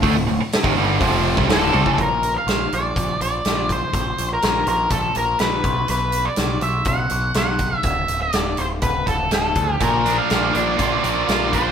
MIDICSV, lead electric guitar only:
0, 0, Header, 1, 2, 480
1, 0, Start_track
1, 0, Tempo, 488998
1, 35, Time_signature, 4, 2, 24, 8
1, 11500, End_track
2, 0, Start_track
2, 0, Title_t, "Lead electric guitar"
2, 0, Program_c, 0, 29
2, 1497, Note_on_c, 0, 69, 79
2, 1926, Note_off_c, 0, 69, 0
2, 1974, Note_on_c, 0, 70, 77
2, 2293, Note_off_c, 0, 70, 0
2, 2333, Note_on_c, 0, 77, 84
2, 2686, Note_on_c, 0, 74, 85
2, 2687, Note_off_c, 0, 77, 0
2, 3149, Note_off_c, 0, 74, 0
2, 3161, Note_on_c, 0, 74, 79
2, 3644, Note_off_c, 0, 74, 0
2, 3654, Note_on_c, 0, 72, 86
2, 4198, Note_off_c, 0, 72, 0
2, 4254, Note_on_c, 0, 70, 81
2, 4573, Note_off_c, 0, 70, 0
2, 4603, Note_on_c, 0, 70, 82
2, 4820, Note_off_c, 0, 70, 0
2, 4824, Note_on_c, 0, 69, 74
2, 5070, Note_off_c, 0, 69, 0
2, 5080, Note_on_c, 0, 70, 73
2, 5295, Note_off_c, 0, 70, 0
2, 5301, Note_on_c, 0, 71, 74
2, 5780, Note_off_c, 0, 71, 0
2, 5792, Note_on_c, 0, 71, 82
2, 6139, Note_on_c, 0, 74, 84
2, 6159, Note_off_c, 0, 71, 0
2, 6501, Note_off_c, 0, 74, 0
2, 6505, Note_on_c, 0, 76, 86
2, 6729, Note_off_c, 0, 76, 0
2, 6748, Note_on_c, 0, 78, 92
2, 7228, Note_off_c, 0, 78, 0
2, 7239, Note_on_c, 0, 78, 91
2, 7725, Note_on_c, 0, 76, 85
2, 7729, Note_off_c, 0, 78, 0
2, 8063, Note_off_c, 0, 76, 0
2, 8067, Note_on_c, 0, 74, 87
2, 8423, Note_on_c, 0, 72, 77
2, 8441, Note_off_c, 0, 74, 0
2, 8489, Note_off_c, 0, 72, 0
2, 8664, Note_on_c, 0, 71, 82
2, 8892, Note_off_c, 0, 71, 0
2, 8911, Note_on_c, 0, 69, 77
2, 9145, Note_off_c, 0, 69, 0
2, 9157, Note_on_c, 0, 69, 73
2, 9648, Note_off_c, 0, 69, 0
2, 9652, Note_on_c, 0, 70, 77
2, 9980, Note_off_c, 0, 70, 0
2, 9994, Note_on_c, 0, 77, 90
2, 10330, Note_off_c, 0, 77, 0
2, 10362, Note_on_c, 0, 74, 86
2, 10828, Note_off_c, 0, 74, 0
2, 10840, Note_on_c, 0, 74, 80
2, 11330, Note_on_c, 0, 72, 81
2, 11334, Note_off_c, 0, 74, 0
2, 11500, Note_off_c, 0, 72, 0
2, 11500, End_track
0, 0, End_of_file